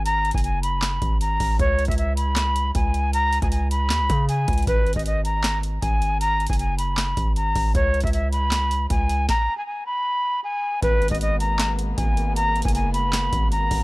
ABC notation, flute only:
X:1
M:4/4
L:1/16
Q:1/4=156
K:G#m
V:1 name="Flute"
a3 g g2 b6 a4 | c3 e e2 b6 g4 | a3 g g2 b6 g4 | B3 d d2 a6 g4 |
a3 g g2 b6 a4 | c3 e e2 b6 g4 | a3 g g2 b6 g4 | B3 d d2 a6 g4 |
a3 g g2 b6 a4 |]